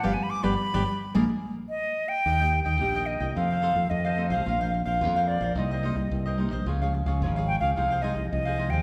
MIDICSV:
0, 0, Header, 1, 6, 480
1, 0, Start_track
1, 0, Key_signature, -3, "major"
1, 0, Tempo, 551471
1, 37, Time_signature, 4, 2, 24, 8
1, 7680, End_track
2, 0, Start_track
2, 0, Title_t, "Flute"
2, 0, Program_c, 0, 73
2, 40, Note_on_c, 0, 77, 79
2, 117, Note_on_c, 0, 80, 80
2, 130, Note_off_c, 0, 77, 0
2, 200, Note_on_c, 0, 83, 90
2, 213, Note_off_c, 0, 80, 0
2, 262, Note_on_c, 0, 86, 104
2, 275, Note_off_c, 0, 83, 0
2, 378, Note_on_c, 0, 83, 91
2, 391, Note_off_c, 0, 86, 0
2, 988, Note_off_c, 0, 83, 0
2, 1473, Note_on_c, 0, 75, 101
2, 1815, Note_on_c, 0, 79, 105
2, 1828, Note_off_c, 0, 75, 0
2, 2289, Note_off_c, 0, 79, 0
2, 2294, Note_on_c, 0, 79, 93
2, 2665, Note_on_c, 0, 75, 77
2, 2678, Note_off_c, 0, 79, 0
2, 2912, Note_off_c, 0, 75, 0
2, 2916, Note_on_c, 0, 77, 83
2, 3394, Note_on_c, 0, 75, 76
2, 3407, Note_off_c, 0, 77, 0
2, 3736, Note_off_c, 0, 75, 0
2, 3741, Note_on_c, 0, 77, 86
2, 4197, Note_off_c, 0, 77, 0
2, 4221, Note_on_c, 0, 77, 77
2, 4593, Note_on_c, 0, 74, 74
2, 4606, Note_off_c, 0, 77, 0
2, 4837, Note_off_c, 0, 74, 0
2, 4844, Note_on_c, 0, 75, 67
2, 5527, Note_off_c, 0, 75, 0
2, 6501, Note_on_c, 0, 79, 92
2, 6606, Note_off_c, 0, 79, 0
2, 6612, Note_on_c, 0, 77, 82
2, 6735, Note_off_c, 0, 77, 0
2, 6743, Note_on_c, 0, 77, 82
2, 6980, Note_on_c, 0, 75, 80
2, 6993, Note_off_c, 0, 77, 0
2, 7228, Note_off_c, 0, 75, 0
2, 7232, Note_on_c, 0, 75, 83
2, 7572, Note_on_c, 0, 79, 79
2, 7586, Note_off_c, 0, 75, 0
2, 7680, Note_off_c, 0, 79, 0
2, 7680, End_track
3, 0, Start_track
3, 0, Title_t, "Cavaquinho"
3, 0, Program_c, 1, 24
3, 29, Note_on_c, 1, 67, 100
3, 33, Note_on_c, 1, 71, 90
3, 37, Note_on_c, 1, 74, 81
3, 111, Note_off_c, 1, 67, 0
3, 111, Note_off_c, 1, 71, 0
3, 111, Note_off_c, 1, 74, 0
3, 378, Note_on_c, 1, 74, 89
3, 383, Note_on_c, 1, 71, 87
3, 386, Note_on_c, 1, 67, 84
3, 464, Note_off_c, 1, 67, 0
3, 464, Note_off_c, 1, 71, 0
3, 465, Note_off_c, 1, 74, 0
3, 645, Note_on_c, 1, 74, 103
3, 646, Note_on_c, 1, 71, 93
3, 651, Note_on_c, 1, 67, 92
3, 719, Note_off_c, 1, 71, 0
3, 720, Note_off_c, 1, 67, 0
3, 720, Note_off_c, 1, 74, 0
3, 997, Note_on_c, 1, 68, 99
3, 1003, Note_on_c, 1, 70, 89
3, 1006, Note_on_c, 1, 74, 92
3, 1075, Note_off_c, 1, 68, 0
3, 1076, Note_off_c, 1, 74, 0
3, 1077, Note_off_c, 1, 70, 0
3, 1962, Note_on_c, 1, 67, 41
3, 1969, Note_on_c, 1, 70, 48
3, 1978, Note_on_c, 1, 75, 47
3, 1980, Note_on_c, 1, 79, 43
3, 2071, Note_off_c, 1, 67, 0
3, 2074, Note_off_c, 1, 70, 0
3, 2076, Note_off_c, 1, 79, 0
3, 2079, Note_off_c, 1, 75, 0
3, 2087, Note_on_c, 1, 79, 68
3, 2098, Note_on_c, 1, 75, 57
3, 2105, Note_on_c, 1, 70, 49
3, 2189, Note_off_c, 1, 70, 0
3, 2191, Note_off_c, 1, 75, 0
3, 2193, Note_off_c, 1, 79, 0
3, 2301, Note_on_c, 1, 79, 57
3, 2312, Note_on_c, 1, 75, 59
3, 2321, Note_on_c, 1, 70, 53
3, 2421, Note_off_c, 1, 79, 0
3, 2426, Note_off_c, 1, 75, 0
3, 2431, Note_off_c, 1, 70, 0
3, 2443, Note_on_c, 1, 67, 40
3, 2449, Note_on_c, 1, 70, 41
3, 2454, Note_on_c, 1, 75, 44
3, 2459, Note_on_c, 1, 79, 44
3, 2551, Note_off_c, 1, 67, 0
3, 2555, Note_off_c, 1, 70, 0
3, 2557, Note_off_c, 1, 75, 0
3, 2557, Note_off_c, 1, 79, 0
3, 2567, Note_on_c, 1, 79, 66
3, 2575, Note_on_c, 1, 75, 61
3, 2583, Note_on_c, 1, 70, 53
3, 2775, Note_off_c, 1, 79, 0
3, 2786, Note_off_c, 1, 75, 0
3, 2786, Note_on_c, 1, 79, 57
3, 2795, Note_off_c, 1, 70, 0
3, 2797, Note_on_c, 1, 75, 56
3, 2805, Note_on_c, 1, 70, 49
3, 2903, Note_off_c, 1, 79, 0
3, 2909, Note_off_c, 1, 75, 0
3, 2913, Note_off_c, 1, 70, 0
3, 2924, Note_on_c, 1, 63, 43
3, 2933, Note_on_c, 1, 69, 44
3, 2934, Note_on_c, 1, 72, 49
3, 2942, Note_on_c, 1, 77, 47
3, 3032, Note_off_c, 1, 63, 0
3, 3037, Note_off_c, 1, 69, 0
3, 3037, Note_off_c, 1, 72, 0
3, 3039, Note_off_c, 1, 77, 0
3, 3049, Note_on_c, 1, 77, 58
3, 3061, Note_on_c, 1, 72, 55
3, 3073, Note_on_c, 1, 69, 47
3, 3146, Note_off_c, 1, 69, 0
3, 3151, Note_on_c, 1, 63, 62
3, 3153, Note_off_c, 1, 72, 0
3, 3155, Note_off_c, 1, 77, 0
3, 3157, Note_on_c, 1, 69, 65
3, 3163, Note_on_c, 1, 72, 72
3, 3170, Note_on_c, 1, 77, 73
3, 3253, Note_off_c, 1, 63, 0
3, 3255, Note_off_c, 1, 69, 0
3, 3261, Note_off_c, 1, 72, 0
3, 3264, Note_off_c, 1, 77, 0
3, 3521, Note_on_c, 1, 77, 66
3, 3532, Note_on_c, 1, 72, 59
3, 3538, Note_on_c, 1, 69, 51
3, 3626, Note_off_c, 1, 69, 0
3, 3631, Note_off_c, 1, 77, 0
3, 3632, Note_on_c, 1, 63, 42
3, 3634, Note_off_c, 1, 72, 0
3, 3636, Note_on_c, 1, 69, 46
3, 3644, Note_on_c, 1, 72, 45
3, 3650, Note_on_c, 1, 77, 53
3, 3733, Note_off_c, 1, 77, 0
3, 3743, Note_on_c, 1, 77, 63
3, 3744, Note_off_c, 1, 72, 0
3, 3747, Note_off_c, 1, 63, 0
3, 3749, Note_off_c, 1, 69, 0
3, 3754, Note_on_c, 1, 72, 63
3, 3762, Note_on_c, 1, 69, 51
3, 3862, Note_off_c, 1, 77, 0
3, 3868, Note_off_c, 1, 72, 0
3, 3871, Note_off_c, 1, 69, 0
3, 3882, Note_on_c, 1, 65, 48
3, 3888, Note_on_c, 1, 70, 45
3, 3895, Note_on_c, 1, 72, 48
3, 3902, Note_on_c, 1, 77, 53
3, 3992, Note_off_c, 1, 65, 0
3, 3995, Note_off_c, 1, 70, 0
3, 3998, Note_off_c, 1, 72, 0
3, 4002, Note_off_c, 1, 77, 0
3, 4011, Note_on_c, 1, 77, 56
3, 4022, Note_on_c, 1, 72, 53
3, 4032, Note_on_c, 1, 70, 47
3, 4114, Note_off_c, 1, 70, 0
3, 4116, Note_off_c, 1, 77, 0
3, 4117, Note_off_c, 1, 72, 0
3, 4226, Note_on_c, 1, 77, 63
3, 4238, Note_on_c, 1, 72, 55
3, 4247, Note_on_c, 1, 70, 52
3, 4344, Note_off_c, 1, 77, 0
3, 4350, Note_off_c, 1, 72, 0
3, 4354, Note_off_c, 1, 70, 0
3, 4360, Note_on_c, 1, 65, 43
3, 4370, Note_on_c, 1, 70, 43
3, 4375, Note_on_c, 1, 72, 45
3, 4380, Note_on_c, 1, 77, 46
3, 4471, Note_off_c, 1, 65, 0
3, 4476, Note_off_c, 1, 70, 0
3, 4478, Note_off_c, 1, 72, 0
3, 4481, Note_off_c, 1, 77, 0
3, 4492, Note_on_c, 1, 77, 63
3, 4502, Note_on_c, 1, 72, 58
3, 4510, Note_on_c, 1, 70, 55
3, 4696, Note_off_c, 1, 77, 0
3, 4706, Note_on_c, 1, 77, 56
3, 4707, Note_off_c, 1, 72, 0
3, 4715, Note_off_c, 1, 70, 0
3, 4717, Note_on_c, 1, 72, 53
3, 4726, Note_on_c, 1, 70, 51
3, 4824, Note_off_c, 1, 77, 0
3, 4829, Note_off_c, 1, 72, 0
3, 4834, Note_off_c, 1, 70, 0
3, 4845, Note_on_c, 1, 63, 46
3, 4854, Note_on_c, 1, 70, 44
3, 4858, Note_on_c, 1, 72, 49
3, 4868, Note_on_c, 1, 75, 50
3, 4953, Note_off_c, 1, 63, 0
3, 4958, Note_off_c, 1, 70, 0
3, 4960, Note_off_c, 1, 72, 0
3, 4961, Note_off_c, 1, 75, 0
3, 4972, Note_on_c, 1, 75, 58
3, 4985, Note_on_c, 1, 72, 52
3, 4994, Note_on_c, 1, 70, 47
3, 5075, Note_off_c, 1, 70, 0
3, 5075, Note_on_c, 1, 63, 67
3, 5077, Note_off_c, 1, 75, 0
3, 5081, Note_off_c, 1, 72, 0
3, 5086, Note_on_c, 1, 70, 62
3, 5091, Note_on_c, 1, 72, 74
3, 5096, Note_on_c, 1, 75, 70
3, 5181, Note_off_c, 1, 63, 0
3, 5184, Note_off_c, 1, 72, 0
3, 5185, Note_off_c, 1, 70, 0
3, 5189, Note_off_c, 1, 75, 0
3, 5445, Note_on_c, 1, 75, 64
3, 5456, Note_on_c, 1, 72, 55
3, 5461, Note_on_c, 1, 70, 58
3, 5552, Note_on_c, 1, 63, 47
3, 5553, Note_off_c, 1, 70, 0
3, 5553, Note_off_c, 1, 75, 0
3, 5558, Note_off_c, 1, 72, 0
3, 5564, Note_on_c, 1, 70, 47
3, 5567, Note_on_c, 1, 72, 51
3, 5574, Note_on_c, 1, 75, 46
3, 5656, Note_off_c, 1, 75, 0
3, 5666, Note_off_c, 1, 63, 0
3, 5667, Note_on_c, 1, 75, 65
3, 5668, Note_off_c, 1, 72, 0
3, 5672, Note_off_c, 1, 70, 0
3, 5678, Note_on_c, 1, 72, 59
3, 5686, Note_on_c, 1, 70, 54
3, 5784, Note_off_c, 1, 75, 0
3, 5789, Note_off_c, 1, 72, 0
3, 5793, Note_off_c, 1, 70, 0
3, 5804, Note_on_c, 1, 65, 44
3, 5811, Note_on_c, 1, 68, 46
3, 5819, Note_on_c, 1, 73, 46
3, 5824, Note_on_c, 1, 77, 50
3, 5912, Note_off_c, 1, 65, 0
3, 5916, Note_off_c, 1, 68, 0
3, 5920, Note_off_c, 1, 73, 0
3, 5922, Note_off_c, 1, 77, 0
3, 5932, Note_on_c, 1, 77, 63
3, 5941, Note_on_c, 1, 73, 61
3, 5949, Note_on_c, 1, 68, 51
3, 6034, Note_off_c, 1, 68, 0
3, 6034, Note_off_c, 1, 73, 0
3, 6036, Note_off_c, 1, 77, 0
3, 6147, Note_on_c, 1, 77, 62
3, 6160, Note_on_c, 1, 73, 60
3, 6168, Note_on_c, 1, 68, 52
3, 6263, Note_off_c, 1, 77, 0
3, 6270, Note_off_c, 1, 73, 0
3, 6274, Note_off_c, 1, 68, 0
3, 6287, Note_on_c, 1, 65, 40
3, 6292, Note_on_c, 1, 68, 46
3, 6297, Note_on_c, 1, 73, 45
3, 6304, Note_on_c, 1, 77, 43
3, 6393, Note_off_c, 1, 65, 0
3, 6396, Note_off_c, 1, 68, 0
3, 6397, Note_off_c, 1, 77, 0
3, 6398, Note_off_c, 1, 73, 0
3, 6408, Note_on_c, 1, 77, 64
3, 6419, Note_on_c, 1, 73, 59
3, 6427, Note_on_c, 1, 68, 59
3, 6610, Note_off_c, 1, 77, 0
3, 6621, Note_on_c, 1, 77, 60
3, 6622, Note_off_c, 1, 73, 0
3, 6632, Note_off_c, 1, 68, 0
3, 6633, Note_on_c, 1, 73, 57
3, 6642, Note_on_c, 1, 68, 50
3, 6740, Note_off_c, 1, 77, 0
3, 6746, Note_off_c, 1, 73, 0
3, 6751, Note_off_c, 1, 68, 0
3, 6756, Note_on_c, 1, 63, 49
3, 6764, Note_on_c, 1, 68, 46
3, 6771, Note_on_c, 1, 72, 51
3, 6777, Note_on_c, 1, 77, 56
3, 6867, Note_off_c, 1, 63, 0
3, 6869, Note_off_c, 1, 77, 0
3, 6871, Note_off_c, 1, 68, 0
3, 6875, Note_off_c, 1, 72, 0
3, 6880, Note_on_c, 1, 77, 63
3, 6892, Note_on_c, 1, 72, 54
3, 6902, Note_on_c, 1, 68, 45
3, 6978, Note_off_c, 1, 68, 0
3, 6981, Note_on_c, 1, 63, 67
3, 6987, Note_off_c, 1, 72, 0
3, 6989, Note_off_c, 1, 77, 0
3, 6989, Note_on_c, 1, 68, 66
3, 6997, Note_on_c, 1, 72, 72
3, 6999, Note_on_c, 1, 77, 77
3, 7084, Note_off_c, 1, 63, 0
3, 7088, Note_off_c, 1, 68, 0
3, 7091, Note_off_c, 1, 72, 0
3, 7098, Note_off_c, 1, 77, 0
3, 7358, Note_on_c, 1, 77, 63
3, 7367, Note_on_c, 1, 72, 64
3, 7376, Note_on_c, 1, 68, 57
3, 7461, Note_off_c, 1, 68, 0
3, 7463, Note_on_c, 1, 63, 49
3, 7468, Note_off_c, 1, 77, 0
3, 7469, Note_off_c, 1, 72, 0
3, 7471, Note_on_c, 1, 68, 47
3, 7479, Note_on_c, 1, 72, 48
3, 7486, Note_on_c, 1, 77, 55
3, 7577, Note_off_c, 1, 77, 0
3, 7580, Note_off_c, 1, 63, 0
3, 7584, Note_off_c, 1, 68, 0
3, 7588, Note_off_c, 1, 72, 0
3, 7588, Note_on_c, 1, 77, 59
3, 7597, Note_on_c, 1, 72, 52
3, 7605, Note_on_c, 1, 68, 49
3, 7680, Note_off_c, 1, 68, 0
3, 7680, Note_off_c, 1, 72, 0
3, 7680, Note_off_c, 1, 77, 0
3, 7680, End_track
4, 0, Start_track
4, 0, Title_t, "Nylon-string guitar"
4, 0, Program_c, 2, 24
4, 29, Note_on_c, 2, 55, 89
4, 29, Note_on_c, 2, 59, 94
4, 32, Note_on_c, 2, 53, 94
4, 109, Note_off_c, 2, 59, 0
4, 110, Note_off_c, 2, 55, 0
4, 111, Note_off_c, 2, 53, 0
4, 376, Note_on_c, 2, 53, 100
4, 378, Note_on_c, 2, 55, 94
4, 378, Note_on_c, 2, 59, 101
4, 462, Note_off_c, 2, 53, 0
4, 462, Note_off_c, 2, 55, 0
4, 462, Note_off_c, 2, 59, 0
4, 636, Note_on_c, 2, 53, 95
4, 643, Note_on_c, 2, 55, 95
4, 644, Note_on_c, 2, 59, 93
4, 715, Note_off_c, 2, 53, 0
4, 715, Note_off_c, 2, 59, 0
4, 717, Note_off_c, 2, 55, 0
4, 994, Note_on_c, 2, 53, 96
4, 996, Note_on_c, 2, 56, 106
4, 997, Note_on_c, 2, 58, 103
4, 1073, Note_off_c, 2, 53, 0
4, 1073, Note_off_c, 2, 56, 0
4, 1073, Note_off_c, 2, 58, 0
4, 1961, Note_on_c, 2, 51, 49
4, 2095, Note_on_c, 2, 58, 51
4, 2098, Note_on_c, 2, 63, 55
4, 2102, Note_on_c, 2, 67, 61
4, 2409, Note_off_c, 2, 58, 0
4, 2411, Note_off_c, 2, 63, 0
4, 2412, Note_off_c, 2, 67, 0
4, 2416, Note_off_c, 2, 51, 0
4, 2440, Note_on_c, 2, 46, 52
4, 2445, Note_on_c, 2, 58, 54
4, 2448, Note_on_c, 2, 63, 54
4, 2448, Note_on_c, 2, 67, 60
4, 2883, Note_off_c, 2, 58, 0
4, 2884, Note_off_c, 2, 63, 0
4, 2886, Note_off_c, 2, 67, 0
4, 2896, Note_off_c, 2, 46, 0
4, 2921, Note_on_c, 2, 41, 54
4, 2925, Note_on_c, 2, 51, 50
4, 2929, Note_on_c, 2, 60, 58
4, 2930, Note_on_c, 2, 57, 51
4, 3147, Note_off_c, 2, 51, 0
4, 3147, Note_off_c, 2, 57, 0
4, 3149, Note_off_c, 2, 60, 0
4, 3260, Note_on_c, 2, 51, 60
4, 3265, Note_on_c, 2, 57, 55
4, 3267, Note_on_c, 2, 60, 60
4, 3378, Note_off_c, 2, 41, 0
4, 3397, Note_on_c, 2, 48, 49
4, 3592, Note_off_c, 2, 51, 0
4, 3593, Note_off_c, 2, 57, 0
4, 3595, Note_off_c, 2, 60, 0
4, 3632, Note_on_c, 2, 51, 47
4, 3635, Note_on_c, 2, 57, 51
4, 3637, Note_on_c, 2, 60, 57
4, 3855, Note_off_c, 2, 48, 0
4, 3857, Note_off_c, 2, 51, 0
4, 3858, Note_off_c, 2, 57, 0
4, 3859, Note_off_c, 2, 60, 0
4, 3877, Note_on_c, 2, 46, 51
4, 3882, Note_on_c, 2, 53, 45
4, 3885, Note_on_c, 2, 58, 50
4, 3886, Note_on_c, 2, 60, 61
4, 3953, Note_off_c, 2, 53, 0
4, 3953, Note_off_c, 2, 58, 0
4, 3955, Note_off_c, 2, 60, 0
4, 4014, Note_on_c, 2, 53, 51
4, 4018, Note_on_c, 2, 58, 59
4, 4019, Note_on_c, 2, 60, 56
4, 4330, Note_off_c, 2, 53, 0
4, 4330, Note_off_c, 2, 58, 0
4, 4332, Note_off_c, 2, 60, 0
4, 4336, Note_off_c, 2, 46, 0
4, 4362, Note_on_c, 2, 41, 52
4, 4366, Note_on_c, 2, 53, 56
4, 4368, Note_on_c, 2, 58, 58
4, 4374, Note_on_c, 2, 60, 59
4, 4804, Note_off_c, 2, 53, 0
4, 4807, Note_off_c, 2, 58, 0
4, 4808, Note_off_c, 2, 60, 0
4, 4818, Note_off_c, 2, 41, 0
4, 4835, Note_on_c, 2, 48, 57
4, 4841, Note_on_c, 2, 55, 54
4, 4841, Note_on_c, 2, 58, 57
4, 4845, Note_on_c, 2, 63, 62
4, 5041, Note_off_c, 2, 55, 0
4, 5043, Note_off_c, 2, 58, 0
4, 5044, Note_off_c, 2, 63, 0
4, 5067, Note_on_c, 2, 55, 52
4, 5071, Note_on_c, 2, 58, 50
4, 5075, Note_on_c, 2, 63, 56
4, 5155, Note_off_c, 2, 55, 0
4, 5157, Note_off_c, 2, 58, 0
4, 5159, Note_off_c, 2, 63, 0
4, 5178, Note_on_c, 2, 55, 58
4, 5183, Note_on_c, 2, 58, 54
4, 5187, Note_on_c, 2, 63, 57
4, 5294, Note_off_c, 2, 48, 0
4, 5317, Note_on_c, 2, 43, 49
4, 5511, Note_off_c, 2, 55, 0
4, 5513, Note_off_c, 2, 58, 0
4, 5515, Note_off_c, 2, 63, 0
4, 5549, Note_on_c, 2, 55, 55
4, 5554, Note_on_c, 2, 58, 53
4, 5555, Note_on_c, 2, 63, 57
4, 5709, Note_off_c, 2, 55, 0
4, 5711, Note_off_c, 2, 58, 0
4, 5712, Note_off_c, 2, 63, 0
4, 5774, Note_off_c, 2, 43, 0
4, 5797, Note_on_c, 2, 49, 51
4, 5798, Note_on_c, 2, 53, 53
4, 5803, Note_on_c, 2, 56, 53
4, 5805, Note_on_c, 2, 61, 55
4, 5880, Note_off_c, 2, 53, 0
4, 5882, Note_off_c, 2, 56, 0
4, 5884, Note_off_c, 2, 61, 0
4, 5920, Note_on_c, 2, 53, 54
4, 5925, Note_on_c, 2, 61, 60
4, 5926, Note_on_c, 2, 56, 57
4, 6242, Note_off_c, 2, 53, 0
4, 6243, Note_off_c, 2, 56, 0
4, 6244, Note_off_c, 2, 61, 0
4, 6255, Note_off_c, 2, 49, 0
4, 6269, Note_on_c, 2, 44, 53
4, 6273, Note_on_c, 2, 53, 54
4, 6274, Note_on_c, 2, 56, 57
4, 6279, Note_on_c, 2, 61, 58
4, 6583, Note_off_c, 2, 53, 0
4, 6585, Note_off_c, 2, 56, 0
4, 6588, Note_off_c, 2, 61, 0
4, 6730, Note_off_c, 2, 44, 0
4, 6758, Note_on_c, 2, 48, 57
4, 6762, Note_on_c, 2, 53, 53
4, 6762, Note_on_c, 2, 56, 54
4, 6766, Note_on_c, 2, 63, 61
4, 6961, Note_off_c, 2, 53, 0
4, 6961, Note_off_c, 2, 56, 0
4, 6963, Note_off_c, 2, 63, 0
4, 6990, Note_on_c, 2, 53, 54
4, 6996, Note_on_c, 2, 56, 60
4, 6996, Note_on_c, 2, 63, 59
4, 7076, Note_off_c, 2, 53, 0
4, 7077, Note_off_c, 2, 56, 0
4, 7078, Note_off_c, 2, 63, 0
4, 7101, Note_on_c, 2, 53, 55
4, 7106, Note_on_c, 2, 56, 59
4, 7111, Note_on_c, 2, 63, 60
4, 7213, Note_off_c, 2, 48, 0
4, 7238, Note_on_c, 2, 48, 49
4, 7430, Note_off_c, 2, 53, 0
4, 7433, Note_off_c, 2, 56, 0
4, 7434, Note_off_c, 2, 63, 0
4, 7466, Note_on_c, 2, 53, 52
4, 7470, Note_on_c, 2, 56, 50
4, 7472, Note_on_c, 2, 63, 57
4, 7680, Note_off_c, 2, 48, 0
4, 7680, Note_off_c, 2, 53, 0
4, 7680, Note_off_c, 2, 56, 0
4, 7680, Note_off_c, 2, 63, 0
4, 7680, End_track
5, 0, Start_track
5, 0, Title_t, "Fingered electric bass"
5, 0, Program_c, 3, 33
5, 40, Note_on_c, 3, 31, 96
5, 128, Note_off_c, 3, 31, 0
5, 383, Note_on_c, 3, 31, 95
5, 479, Note_off_c, 3, 31, 0
5, 649, Note_on_c, 3, 31, 107
5, 733, Note_off_c, 3, 31, 0
5, 1002, Note_on_c, 3, 34, 98
5, 1090, Note_off_c, 3, 34, 0
5, 1965, Note_on_c, 3, 39, 82
5, 2269, Note_off_c, 3, 39, 0
5, 2313, Note_on_c, 3, 39, 76
5, 2449, Note_off_c, 3, 39, 0
5, 2449, Note_on_c, 3, 34, 83
5, 2751, Note_off_c, 3, 34, 0
5, 2790, Note_on_c, 3, 36, 78
5, 2896, Note_off_c, 3, 36, 0
5, 2930, Note_on_c, 3, 41, 85
5, 3232, Note_off_c, 3, 41, 0
5, 3269, Note_on_c, 3, 41, 71
5, 3376, Note_off_c, 3, 41, 0
5, 3403, Note_on_c, 3, 41, 87
5, 3746, Note_on_c, 3, 36, 84
5, 3759, Note_off_c, 3, 41, 0
5, 3854, Note_off_c, 3, 36, 0
5, 3884, Note_on_c, 3, 34, 79
5, 4189, Note_off_c, 3, 34, 0
5, 4229, Note_on_c, 3, 34, 72
5, 4363, Note_on_c, 3, 41, 85
5, 4376, Note_off_c, 3, 34, 0
5, 4668, Note_off_c, 3, 41, 0
5, 4706, Note_on_c, 3, 34, 72
5, 4814, Note_off_c, 3, 34, 0
5, 4835, Note_on_c, 3, 36, 87
5, 5143, Note_off_c, 3, 36, 0
5, 5183, Note_on_c, 3, 36, 71
5, 5292, Note_off_c, 3, 36, 0
5, 5323, Note_on_c, 3, 36, 88
5, 5664, Note_off_c, 3, 36, 0
5, 5664, Note_on_c, 3, 34, 82
5, 5773, Note_off_c, 3, 34, 0
5, 5800, Note_on_c, 3, 37, 85
5, 6105, Note_off_c, 3, 37, 0
5, 6146, Note_on_c, 3, 37, 81
5, 6283, Note_on_c, 3, 32, 90
5, 6296, Note_off_c, 3, 37, 0
5, 6587, Note_off_c, 3, 32, 0
5, 6624, Note_on_c, 3, 37, 73
5, 6732, Note_off_c, 3, 37, 0
5, 6766, Note_on_c, 3, 36, 81
5, 7068, Note_off_c, 3, 36, 0
5, 7107, Note_on_c, 3, 36, 70
5, 7213, Note_off_c, 3, 36, 0
5, 7247, Note_on_c, 3, 36, 90
5, 7582, Note_off_c, 3, 36, 0
5, 7582, Note_on_c, 3, 39, 84
5, 7680, Note_off_c, 3, 39, 0
5, 7680, End_track
6, 0, Start_track
6, 0, Title_t, "Muted cavaquinho strokes"
6, 2197, Note_on_c, 9, 29, 30
6, 2284, Note_off_c, 9, 29, 0
6, 3264, Note_on_c, 9, 29, 37
6, 3351, Note_off_c, 9, 29, 0
6, 4118, Note_on_c, 9, 29, 33
6, 4205, Note_off_c, 9, 29, 0
6, 5191, Note_on_c, 9, 29, 36
6, 5278, Note_off_c, 9, 29, 0
6, 6040, Note_on_c, 9, 29, 32
6, 6127, Note_off_c, 9, 29, 0
6, 7095, Note_on_c, 9, 29, 37
6, 7182, Note_off_c, 9, 29, 0
6, 7680, End_track
0, 0, End_of_file